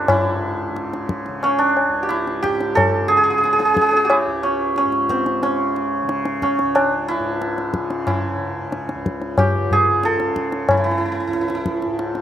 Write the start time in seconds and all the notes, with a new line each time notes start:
Already playing: C#2 C#3 D4 G4 A4 C5
0.08 G#2 E4, tabla na, tabla ge
0.69 C#3
0.76 tabla te
0.93 tabla te
1.09 tabla ke
1.26 C#3, tabla te
1.43 C#4, tabla na
1.59 D4
1.77 tabla na
1.88 C#2
2.03 G4
2.09 E4, tabla te
2.27 tabla te
2.43 G4, tabla ke
2.48 G#2
2.60 tabla te
2.75 A4, tabla na, tabla ge
3.08 C#3 G#4
3.17 G#4
3.24 G#4
3.30 G#4
3.38 G#4
3.44 G#4, tabla te
3.53 G#4
3.59 G#4, tabla te
3.65 C#3 G#4
3.74 G#4, tabla ke
3.81 G#4
3.89 G#4
3.93 G#4, tabla te
4.05 G4
4.10 E4, tabla na
4.26 C#2
4.43 C#4
4.76 C#4, tabla te
4.85 G#2
4.92 tabla te
5.09 C4, tabla ke
5.26 tabla te
5.43 C#3 C#4, tabla te
5.76 tabla te
6.03 C#3
6.09 tabla te
6.25 tabla te
6.42 C#4, tabla ke
6.59 C#2, tabla te
6.75 D4, tabla na
7.08 E4, tabla na
7.19 G#2
7.42 tabla te
7.58 tabla te
7.74 tabla ke
7.78 C#3
7.90 tabla te
8.07 E4, tabla na, tabla ge
8.36 C#3
8.72 tabla te
8.89 tabla te
8.95 C#2
9.06 tabla ke
9.22 tabla te
9.38 G4, tabla na, tabla ge
9.52 G#2
9.71 G#4, tabla ge
10.03 A4, tabla te
10.10 C#3
10.20 tabla te
10.36 tabla ke
10.52 tabla te
10.68 C#3 E4, tabla na, tabla ge
10.77 E4
10.84 E4
10.91 E4
10.98 E4
11.06 E4
11.12 E4
11.20 E4
11.27 C#2 E4
11.33 E4, tabla te
11.41 E4
11.48 E4, tabla te
11.55 E4
11.66 tabla ke
11.82 G#2, tabla te
11.99 tabla te
12.15 tabla te